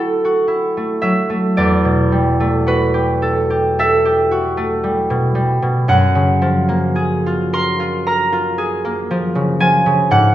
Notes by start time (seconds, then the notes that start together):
Already playing: D3 F#3 A3 E4 F#4 A4 D5 F#5
0.25 F#4
0.48 E4
0.77 A3
1.02 F#3 E5
1.30 A3
1.57 E2 D5
1.85 B2
2.12 G3
2.40 A3
2.67 F#4 B4
2.94 G4
3.22 A4
3.50 G4
3.79 A4 E5
4.05 G4
4.31 F#4
4.57 A3
4.84 G3
5.10 B2
5.35 G3
5.62 B2
5.88 F#2 F#5
6.15 C#3
6.42 F3
6.69 A#3
6.96 G#4
7.26 F4
7.53 A#4 C6
7.80 F4
8.07 A#4 A#5
8.33 F4
8.58 G#4
8.85 A#3
9.11 F3
9.35 C#3
9.60 F3 G#5
9.86 C#3
10.11 G#2 F#5